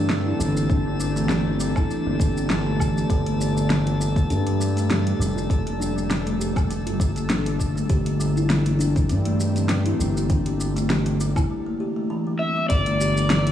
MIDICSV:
0, 0, Header, 1, 7, 480
1, 0, Start_track
1, 0, Tempo, 600000
1, 559, Time_signature, 4, 2, 24, 8
1, 10815, End_track
2, 0, Start_track
2, 0, Title_t, "Electric slide guitar"
2, 0, Program_c, 0, 29
2, 9913, Note_on_c, 0, 76, 107
2, 10148, Note_off_c, 0, 76, 0
2, 10152, Note_on_c, 0, 74, 107
2, 10815, Note_off_c, 0, 74, 0
2, 10815, End_track
3, 0, Start_track
3, 0, Title_t, "Synth texture"
3, 0, Program_c, 1, 99
3, 0, Note_on_c, 1, 69, 81
3, 0, Note_on_c, 1, 81, 84
3, 9199, Note_off_c, 1, 69, 0
3, 9199, Note_off_c, 1, 81, 0
3, 10815, End_track
4, 0, Start_track
4, 0, Title_t, "Ambient pad"
4, 0, Program_c, 2, 92
4, 0, Note_on_c, 2, 52, 83
4, 0, Note_on_c, 2, 60, 90
4, 0, Note_on_c, 2, 62, 84
4, 0, Note_on_c, 2, 67, 76
4, 0, Note_on_c, 2, 69, 92
4, 0, Note_on_c, 2, 74, 78
4, 183, Note_off_c, 2, 69, 0
4, 2472, Note_on_c, 2, 55, 75
4, 2478, Note_off_c, 2, 52, 0
4, 3284, Note_on_c, 2, 69, 76
4, 4021, Note_off_c, 2, 60, 0
4, 4022, Note_off_c, 2, 67, 0
4, 6315, Note_off_c, 2, 55, 0
4, 6321, Note_on_c, 2, 52, 74
4, 6421, Note_on_c, 2, 60, 95
4, 6560, Note_on_c, 2, 67, 92
4, 7788, Note_off_c, 2, 69, 0
4, 9196, Note_off_c, 2, 67, 0
4, 9198, Note_off_c, 2, 60, 0
4, 9200, Note_off_c, 2, 52, 0
4, 9203, Note_off_c, 2, 62, 0
4, 9204, Note_off_c, 2, 74, 0
4, 10160, Note_on_c, 2, 55, 79
4, 10370, Note_on_c, 2, 81, 92
4, 10584, Note_on_c, 2, 62, 74
4, 10815, Note_off_c, 2, 55, 0
4, 10815, Note_off_c, 2, 62, 0
4, 10815, Note_off_c, 2, 81, 0
4, 10815, End_track
5, 0, Start_track
5, 0, Title_t, "Kalimba"
5, 0, Program_c, 3, 108
5, 77, Note_on_c, 3, 55, 95
5, 196, Note_off_c, 3, 55, 0
5, 208, Note_on_c, 3, 64, 65
5, 271, Note_off_c, 3, 64, 0
5, 318, Note_on_c, 3, 55, 73
5, 436, Note_off_c, 3, 55, 0
5, 450, Note_on_c, 3, 58, 66
5, 512, Note_off_c, 3, 58, 0
5, 559, Note_on_c, 3, 62, 96
5, 677, Note_off_c, 3, 62, 0
5, 690, Note_on_c, 3, 55, 71
5, 788, Note_off_c, 3, 55, 0
5, 799, Note_on_c, 3, 55, 98
5, 923, Note_off_c, 3, 55, 0
5, 930, Note_on_c, 3, 57, 101
5, 992, Note_off_c, 3, 57, 0
5, 1040, Note_on_c, 3, 67, 76
5, 1157, Note_off_c, 3, 67, 0
5, 1169, Note_on_c, 3, 50, 67
5, 1273, Note_off_c, 3, 50, 0
5, 1281, Note_on_c, 3, 55, 98
5, 1398, Note_off_c, 3, 55, 0
5, 1413, Note_on_c, 3, 64, 72
5, 1473, Note_off_c, 3, 64, 0
5, 1522, Note_on_c, 3, 55, 76
5, 1638, Note_off_c, 3, 55, 0
5, 1651, Note_on_c, 3, 58, 72
5, 1713, Note_off_c, 3, 58, 0
5, 1761, Note_on_c, 3, 62, 89
5, 1878, Note_off_c, 3, 62, 0
5, 1891, Note_on_c, 3, 55, 67
5, 1988, Note_off_c, 3, 55, 0
5, 2001, Note_on_c, 3, 55, 96
5, 2124, Note_off_c, 3, 55, 0
5, 2131, Note_on_c, 3, 57, 91
5, 2193, Note_off_c, 3, 57, 0
5, 2240, Note_on_c, 3, 67, 69
5, 2358, Note_off_c, 3, 67, 0
5, 2371, Note_on_c, 3, 50, 69
5, 2474, Note_off_c, 3, 50, 0
5, 2481, Note_on_c, 3, 55, 95
5, 2604, Note_off_c, 3, 55, 0
5, 2612, Note_on_c, 3, 57, 96
5, 2673, Note_off_c, 3, 57, 0
5, 2721, Note_on_c, 3, 67, 71
5, 2838, Note_off_c, 3, 67, 0
5, 2852, Note_on_c, 3, 50, 75
5, 2955, Note_off_c, 3, 50, 0
5, 2961, Note_on_c, 3, 55, 93
5, 3078, Note_off_c, 3, 55, 0
5, 3090, Note_on_c, 3, 65, 68
5, 3152, Note_off_c, 3, 65, 0
5, 3200, Note_on_c, 3, 55, 72
5, 3317, Note_off_c, 3, 55, 0
5, 3330, Note_on_c, 3, 58, 70
5, 3392, Note_off_c, 3, 58, 0
5, 3443, Note_on_c, 3, 62, 98
5, 3559, Note_off_c, 3, 62, 0
5, 3572, Note_on_c, 3, 55, 75
5, 3669, Note_off_c, 3, 55, 0
5, 3681, Note_on_c, 3, 55, 86
5, 3804, Note_off_c, 3, 55, 0
5, 3812, Note_on_c, 3, 57, 91
5, 3873, Note_off_c, 3, 57, 0
5, 3922, Note_on_c, 3, 67, 84
5, 4038, Note_off_c, 3, 67, 0
5, 4052, Note_on_c, 3, 50, 65
5, 4154, Note_off_c, 3, 50, 0
5, 4160, Note_on_c, 3, 55, 93
5, 4277, Note_off_c, 3, 55, 0
5, 4287, Note_on_c, 3, 65, 71
5, 4351, Note_off_c, 3, 65, 0
5, 4399, Note_on_c, 3, 55, 75
5, 4517, Note_off_c, 3, 55, 0
5, 4529, Note_on_c, 3, 58, 70
5, 4591, Note_off_c, 3, 58, 0
5, 4639, Note_on_c, 3, 62, 94
5, 4757, Note_off_c, 3, 62, 0
5, 4769, Note_on_c, 3, 55, 75
5, 4867, Note_off_c, 3, 55, 0
5, 4876, Note_on_c, 3, 55, 88
5, 5002, Note_off_c, 3, 55, 0
5, 5008, Note_on_c, 3, 57, 95
5, 5071, Note_off_c, 3, 57, 0
5, 5116, Note_on_c, 3, 67, 72
5, 5235, Note_off_c, 3, 67, 0
5, 5250, Note_on_c, 3, 50, 72
5, 5354, Note_off_c, 3, 50, 0
5, 5359, Note_on_c, 3, 55, 94
5, 5477, Note_off_c, 3, 55, 0
5, 5488, Note_on_c, 3, 65, 75
5, 5551, Note_off_c, 3, 65, 0
5, 5597, Note_on_c, 3, 55, 71
5, 5716, Note_off_c, 3, 55, 0
5, 5729, Note_on_c, 3, 58, 76
5, 5792, Note_off_c, 3, 58, 0
5, 5837, Note_on_c, 3, 62, 100
5, 5956, Note_off_c, 3, 62, 0
5, 5969, Note_on_c, 3, 55, 71
5, 6064, Note_off_c, 3, 55, 0
5, 6074, Note_on_c, 3, 55, 93
5, 6201, Note_off_c, 3, 55, 0
5, 6206, Note_on_c, 3, 57, 89
5, 6270, Note_off_c, 3, 57, 0
5, 6314, Note_on_c, 3, 67, 78
5, 6434, Note_off_c, 3, 67, 0
5, 6447, Note_on_c, 3, 50, 75
5, 6552, Note_off_c, 3, 50, 0
5, 6557, Note_on_c, 3, 55, 95
5, 6676, Note_off_c, 3, 55, 0
5, 6689, Note_on_c, 3, 64, 75
5, 6751, Note_off_c, 3, 64, 0
5, 6794, Note_on_c, 3, 55, 77
5, 6914, Note_off_c, 3, 55, 0
5, 6924, Note_on_c, 3, 58, 70
5, 6989, Note_off_c, 3, 58, 0
5, 7032, Note_on_c, 3, 62, 100
5, 7153, Note_off_c, 3, 62, 0
5, 7164, Note_on_c, 3, 55, 74
5, 7265, Note_off_c, 3, 55, 0
5, 7273, Note_on_c, 3, 55, 97
5, 7401, Note_off_c, 3, 55, 0
5, 7406, Note_on_c, 3, 57, 104
5, 7470, Note_off_c, 3, 57, 0
5, 7516, Note_on_c, 3, 67, 67
5, 7635, Note_off_c, 3, 67, 0
5, 7649, Note_on_c, 3, 50, 74
5, 7753, Note_off_c, 3, 50, 0
5, 7758, Note_on_c, 3, 55, 102
5, 7876, Note_off_c, 3, 55, 0
5, 7888, Note_on_c, 3, 64, 75
5, 7951, Note_off_c, 3, 64, 0
5, 8000, Note_on_c, 3, 55, 76
5, 8118, Note_off_c, 3, 55, 0
5, 8130, Note_on_c, 3, 58, 71
5, 8192, Note_off_c, 3, 58, 0
5, 8238, Note_on_c, 3, 62, 99
5, 8356, Note_off_c, 3, 62, 0
5, 8372, Note_on_c, 3, 55, 77
5, 8469, Note_off_c, 3, 55, 0
5, 8477, Note_on_c, 3, 55, 99
5, 8602, Note_off_c, 3, 55, 0
5, 8608, Note_on_c, 3, 57, 103
5, 8671, Note_off_c, 3, 57, 0
5, 8719, Note_on_c, 3, 67, 74
5, 8837, Note_off_c, 3, 67, 0
5, 8851, Note_on_c, 3, 50, 72
5, 8954, Note_off_c, 3, 50, 0
5, 8962, Note_on_c, 3, 55, 103
5, 9078, Note_off_c, 3, 55, 0
5, 9091, Note_on_c, 3, 64, 75
5, 9153, Note_off_c, 3, 64, 0
5, 9200, Note_on_c, 3, 55, 83
5, 9318, Note_off_c, 3, 55, 0
5, 9332, Note_on_c, 3, 58, 74
5, 9393, Note_off_c, 3, 58, 0
5, 9442, Note_on_c, 3, 67, 70
5, 9565, Note_off_c, 3, 67, 0
5, 9570, Note_on_c, 3, 57, 73
5, 9668, Note_off_c, 3, 57, 0
5, 9681, Note_on_c, 3, 52, 88
5, 9798, Note_off_c, 3, 52, 0
5, 9814, Note_on_c, 3, 55, 74
5, 9916, Note_off_c, 3, 55, 0
5, 9921, Note_on_c, 3, 60, 73
5, 10044, Note_off_c, 3, 60, 0
5, 10053, Note_on_c, 3, 55, 73
5, 10150, Note_off_c, 3, 55, 0
5, 10163, Note_on_c, 3, 55, 95
5, 10285, Note_off_c, 3, 55, 0
5, 10294, Note_on_c, 3, 57, 90
5, 10354, Note_off_c, 3, 57, 0
5, 10404, Note_on_c, 3, 67, 73
5, 10519, Note_off_c, 3, 67, 0
5, 10533, Note_on_c, 3, 50, 76
5, 10635, Note_off_c, 3, 50, 0
5, 10644, Note_on_c, 3, 55, 94
5, 10759, Note_off_c, 3, 55, 0
5, 10776, Note_on_c, 3, 65, 67
5, 10815, Note_off_c, 3, 65, 0
5, 10815, End_track
6, 0, Start_track
6, 0, Title_t, "Analog synth bass"
6, 0, Program_c, 4, 38
6, 0, Note_on_c, 4, 43, 88
6, 266, Note_off_c, 4, 43, 0
6, 315, Note_on_c, 4, 31, 98
6, 1464, Note_off_c, 4, 31, 0
6, 1648, Note_on_c, 4, 31, 86
6, 2425, Note_off_c, 4, 31, 0
6, 2478, Note_on_c, 4, 31, 91
6, 3435, Note_on_c, 4, 43, 86
6, 3447, Note_off_c, 4, 31, 0
6, 4104, Note_off_c, 4, 43, 0
6, 4156, Note_on_c, 4, 29, 99
6, 5490, Note_on_c, 4, 31, 84
6, 5502, Note_off_c, 4, 29, 0
6, 6266, Note_off_c, 4, 31, 0
6, 6317, Note_on_c, 4, 31, 102
6, 7278, Note_on_c, 4, 43, 92
6, 7290, Note_off_c, 4, 31, 0
6, 7946, Note_off_c, 4, 43, 0
6, 7996, Note_on_c, 4, 31, 107
6, 9144, Note_off_c, 4, 31, 0
6, 10159, Note_on_c, 4, 31, 97
6, 10815, Note_off_c, 4, 31, 0
6, 10815, End_track
7, 0, Start_track
7, 0, Title_t, "Drums"
7, 77, Note_on_c, 9, 38, 94
7, 85, Note_on_c, 9, 82, 35
7, 157, Note_off_c, 9, 38, 0
7, 165, Note_off_c, 9, 82, 0
7, 325, Note_on_c, 9, 82, 80
7, 405, Note_off_c, 9, 82, 0
7, 455, Note_on_c, 9, 82, 41
7, 535, Note_off_c, 9, 82, 0
7, 556, Note_on_c, 9, 36, 114
7, 563, Note_on_c, 9, 82, 32
7, 636, Note_off_c, 9, 36, 0
7, 643, Note_off_c, 9, 82, 0
7, 801, Note_on_c, 9, 82, 81
7, 881, Note_off_c, 9, 82, 0
7, 932, Note_on_c, 9, 82, 46
7, 1012, Note_off_c, 9, 82, 0
7, 1034, Note_on_c, 9, 38, 90
7, 1042, Note_on_c, 9, 82, 33
7, 1114, Note_off_c, 9, 38, 0
7, 1122, Note_off_c, 9, 82, 0
7, 1281, Note_on_c, 9, 82, 72
7, 1361, Note_off_c, 9, 82, 0
7, 1407, Note_on_c, 9, 77, 55
7, 1408, Note_on_c, 9, 36, 107
7, 1415, Note_on_c, 9, 82, 41
7, 1487, Note_off_c, 9, 77, 0
7, 1488, Note_off_c, 9, 36, 0
7, 1495, Note_off_c, 9, 82, 0
7, 1526, Note_on_c, 9, 82, 32
7, 1606, Note_off_c, 9, 82, 0
7, 1757, Note_on_c, 9, 36, 105
7, 1766, Note_on_c, 9, 82, 73
7, 1837, Note_off_c, 9, 36, 0
7, 1846, Note_off_c, 9, 82, 0
7, 1898, Note_on_c, 9, 82, 43
7, 1978, Note_off_c, 9, 82, 0
7, 1999, Note_on_c, 9, 38, 92
7, 2007, Note_on_c, 9, 82, 32
7, 2079, Note_off_c, 9, 38, 0
7, 2087, Note_off_c, 9, 82, 0
7, 2237, Note_on_c, 9, 36, 59
7, 2242, Note_on_c, 9, 77, 54
7, 2250, Note_on_c, 9, 82, 79
7, 2317, Note_off_c, 9, 36, 0
7, 2322, Note_off_c, 9, 77, 0
7, 2330, Note_off_c, 9, 82, 0
7, 2380, Note_on_c, 9, 82, 40
7, 2460, Note_off_c, 9, 82, 0
7, 2477, Note_on_c, 9, 36, 105
7, 2482, Note_on_c, 9, 42, 55
7, 2490, Note_on_c, 9, 82, 30
7, 2557, Note_off_c, 9, 36, 0
7, 2562, Note_off_c, 9, 42, 0
7, 2570, Note_off_c, 9, 82, 0
7, 2611, Note_on_c, 9, 42, 40
7, 2691, Note_off_c, 9, 42, 0
7, 2728, Note_on_c, 9, 82, 77
7, 2808, Note_off_c, 9, 82, 0
7, 2858, Note_on_c, 9, 82, 44
7, 2938, Note_off_c, 9, 82, 0
7, 2962, Note_on_c, 9, 38, 88
7, 2962, Note_on_c, 9, 42, 62
7, 2970, Note_on_c, 9, 82, 31
7, 3042, Note_off_c, 9, 38, 0
7, 3042, Note_off_c, 9, 42, 0
7, 3050, Note_off_c, 9, 82, 0
7, 3095, Note_on_c, 9, 42, 39
7, 3175, Note_off_c, 9, 42, 0
7, 3209, Note_on_c, 9, 82, 69
7, 3289, Note_off_c, 9, 82, 0
7, 3329, Note_on_c, 9, 36, 104
7, 3332, Note_on_c, 9, 42, 26
7, 3340, Note_on_c, 9, 82, 41
7, 3409, Note_off_c, 9, 36, 0
7, 3412, Note_off_c, 9, 42, 0
7, 3420, Note_off_c, 9, 82, 0
7, 3442, Note_on_c, 9, 42, 61
7, 3450, Note_on_c, 9, 82, 34
7, 3522, Note_off_c, 9, 42, 0
7, 3530, Note_off_c, 9, 82, 0
7, 3573, Note_on_c, 9, 42, 37
7, 3653, Note_off_c, 9, 42, 0
7, 3688, Note_on_c, 9, 82, 73
7, 3768, Note_off_c, 9, 82, 0
7, 3816, Note_on_c, 9, 42, 28
7, 3824, Note_on_c, 9, 82, 43
7, 3896, Note_off_c, 9, 42, 0
7, 3904, Note_off_c, 9, 82, 0
7, 3924, Note_on_c, 9, 38, 88
7, 3924, Note_on_c, 9, 42, 62
7, 3932, Note_on_c, 9, 82, 31
7, 4004, Note_off_c, 9, 38, 0
7, 4004, Note_off_c, 9, 42, 0
7, 4012, Note_off_c, 9, 82, 0
7, 4054, Note_on_c, 9, 42, 42
7, 4134, Note_off_c, 9, 42, 0
7, 4173, Note_on_c, 9, 82, 72
7, 4253, Note_off_c, 9, 82, 0
7, 4304, Note_on_c, 9, 82, 41
7, 4384, Note_off_c, 9, 82, 0
7, 4399, Note_on_c, 9, 36, 106
7, 4406, Note_on_c, 9, 42, 59
7, 4414, Note_on_c, 9, 82, 31
7, 4479, Note_off_c, 9, 36, 0
7, 4486, Note_off_c, 9, 42, 0
7, 4494, Note_off_c, 9, 82, 0
7, 4534, Note_on_c, 9, 42, 44
7, 4614, Note_off_c, 9, 42, 0
7, 4655, Note_on_c, 9, 82, 73
7, 4735, Note_off_c, 9, 82, 0
7, 4784, Note_on_c, 9, 82, 41
7, 4864, Note_off_c, 9, 82, 0
7, 4885, Note_on_c, 9, 38, 85
7, 4885, Note_on_c, 9, 42, 63
7, 4893, Note_on_c, 9, 82, 28
7, 4965, Note_off_c, 9, 38, 0
7, 4965, Note_off_c, 9, 42, 0
7, 4973, Note_off_c, 9, 82, 0
7, 5014, Note_on_c, 9, 42, 40
7, 5094, Note_off_c, 9, 42, 0
7, 5130, Note_on_c, 9, 82, 69
7, 5210, Note_off_c, 9, 82, 0
7, 5250, Note_on_c, 9, 36, 97
7, 5253, Note_on_c, 9, 42, 29
7, 5253, Note_on_c, 9, 77, 58
7, 5261, Note_on_c, 9, 82, 38
7, 5330, Note_off_c, 9, 36, 0
7, 5333, Note_off_c, 9, 42, 0
7, 5333, Note_off_c, 9, 77, 0
7, 5341, Note_off_c, 9, 82, 0
7, 5364, Note_on_c, 9, 42, 66
7, 5372, Note_on_c, 9, 82, 34
7, 5444, Note_off_c, 9, 42, 0
7, 5452, Note_off_c, 9, 82, 0
7, 5494, Note_on_c, 9, 42, 41
7, 5574, Note_off_c, 9, 42, 0
7, 5598, Note_on_c, 9, 36, 92
7, 5607, Note_on_c, 9, 82, 70
7, 5678, Note_off_c, 9, 36, 0
7, 5687, Note_off_c, 9, 82, 0
7, 5728, Note_on_c, 9, 42, 29
7, 5736, Note_on_c, 9, 82, 42
7, 5808, Note_off_c, 9, 42, 0
7, 5816, Note_off_c, 9, 82, 0
7, 5838, Note_on_c, 9, 38, 91
7, 5838, Note_on_c, 9, 42, 65
7, 5846, Note_on_c, 9, 82, 31
7, 5918, Note_off_c, 9, 38, 0
7, 5918, Note_off_c, 9, 42, 0
7, 5926, Note_off_c, 9, 82, 0
7, 5971, Note_on_c, 9, 42, 43
7, 6051, Note_off_c, 9, 42, 0
7, 6078, Note_on_c, 9, 36, 56
7, 6084, Note_on_c, 9, 82, 78
7, 6158, Note_off_c, 9, 36, 0
7, 6164, Note_off_c, 9, 82, 0
7, 6219, Note_on_c, 9, 82, 42
7, 6299, Note_off_c, 9, 82, 0
7, 6316, Note_on_c, 9, 42, 64
7, 6317, Note_on_c, 9, 36, 111
7, 6324, Note_on_c, 9, 82, 31
7, 6396, Note_off_c, 9, 42, 0
7, 6397, Note_off_c, 9, 36, 0
7, 6404, Note_off_c, 9, 82, 0
7, 6449, Note_on_c, 9, 42, 44
7, 6529, Note_off_c, 9, 42, 0
7, 6565, Note_on_c, 9, 82, 70
7, 6645, Note_off_c, 9, 82, 0
7, 6697, Note_on_c, 9, 82, 42
7, 6777, Note_off_c, 9, 82, 0
7, 6799, Note_on_c, 9, 38, 92
7, 6799, Note_on_c, 9, 42, 66
7, 6807, Note_on_c, 9, 82, 30
7, 6879, Note_off_c, 9, 38, 0
7, 6879, Note_off_c, 9, 42, 0
7, 6887, Note_off_c, 9, 82, 0
7, 6928, Note_on_c, 9, 42, 45
7, 7008, Note_off_c, 9, 42, 0
7, 7045, Note_on_c, 9, 82, 71
7, 7125, Note_off_c, 9, 82, 0
7, 7168, Note_on_c, 9, 36, 98
7, 7168, Note_on_c, 9, 42, 30
7, 7176, Note_on_c, 9, 82, 41
7, 7248, Note_off_c, 9, 36, 0
7, 7248, Note_off_c, 9, 42, 0
7, 7256, Note_off_c, 9, 82, 0
7, 7275, Note_on_c, 9, 42, 67
7, 7283, Note_on_c, 9, 82, 32
7, 7355, Note_off_c, 9, 42, 0
7, 7363, Note_off_c, 9, 82, 0
7, 7403, Note_on_c, 9, 42, 43
7, 7483, Note_off_c, 9, 42, 0
7, 7522, Note_on_c, 9, 82, 69
7, 7602, Note_off_c, 9, 82, 0
7, 7647, Note_on_c, 9, 42, 33
7, 7655, Note_on_c, 9, 82, 40
7, 7727, Note_off_c, 9, 42, 0
7, 7735, Note_off_c, 9, 82, 0
7, 7753, Note_on_c, 9, 38, 88
7, 7753, Note_on_c, 9, 42, 66
7, 7761, Note_on_c, 9, 82, 30
7, 7833, Note_off_c, 9, 38, 0
7, 7833, Note_off_c, 9, 42, 0
7, 7841, Note_off_c, 9, 82, 0
7, 7885, Note_on_c, 9, 42, 44
7, 7965, Note_off_c, 9, 42, 0
7, 8005, Note_on_c, 9, 82, 71
7, 8085, Note_off_c, 9, 82, 0
7, 8138, Note_on_c, 9, 82, 40
7, 8218, Note_off_c, 9, 82, 0
7, 8238, Note_on_c, 9, 36, 105
7, 8238, Note_on_c, 9, 42, 70
7, 8246, Note_on_c, 9, 82, 30
7, 8318, Note_off_c, 9, 36, 0
7, 8318, Note_off_c, 9, 42, 0
7, 8326, Note_off_c, 9, 82, 0
7, 8368, Note_on_c, 9, 42, 45
7, 8448, Note_off_c, 9, 42, 0
7, 8485, Note_on_c, 9, 82, 73
7, 8565, Note_off_c, 9, 82, 0
7, 8612, Note_on_c, 9, 42, 33
7, 8620, Note_on_c, 9, 82, 41
7, 8692, Note_off_c, 9, 42, 0
7, 8700, Note_off_c, 9, 82, 0
7, 8720, Note_on_c, 9, 38, 93
7, 8720, Note_on_c, 9, 42, 63
7, 8728, Note_on_c, 9, 82, 30
7, 8800, Note_off_c, 9, 38, 0
7, 8800, Note_off_c, 9, 42, 0
7, 8808, Note_off_c, 9, 82, 0
7, 8848, Note_on_c, 9, 42, 43
7, 8928, Note_off_c, 9, 42, 0
7, 8964, Note_on_c, 9, 82, 72
7, 9044, Note_off_c, 9, 82, 0
7, 9089, Note_on_c, 9, 36, 97
7, 9090, Note_on_c, 9, 42, 30
7, 9090, Note_on_c, 9, 77, 61
7, 9098, Note_on_c, 9, 82, 39
7, 9169, Note_off_c, 9, 36, 0
7, 9170, Note_off_c, 9, 42, 0
7, 9170, Note_off_c, 9, 77, 0
7, 9178, Note_off_c, 9, 82, 0
7, 10159, Note_on_c, 9, 36, 112
7, 10159, Note_on_c, 9, 42, 68
7, 10167, Note_on_c, 9, 82, 31
7, 10239, Note_off_c, 9, 36, 0
7, 10239, Note_off_c, 9, 42, 0
7, 10247, Note_off_c, 9, 82, 0
7, 10290, Note_on_c, 9, 42, 48
7, 10370, Note_off_c, 9, 42, 0
7, 10406, Note_on_c, 9, 82, 83
7, 10486, Note_off_c, 9, 82, 0
7, 10539, Note_on_c, 9, 82, 45
7, 10619, Note_off_c, 9, 82, 0
7, 10641, Note_on_c, 9, 38, 103
7, 10641, Note_on_c, 9, 42, 69
7, 10649, Note_on_c, 9, 82, 32
7, 10721, Note_off_c, 9, 38, 0
7, 10721, Note_off_c, 9, 42, 0
7, 10729, Note_off_c, 9, 82, 0
7, 10774, Note_on_c, 9, 42, 43
7, 10815, Note_off_c, 9, 42, 0
7, 10815, End_track
0, 0, End_of_file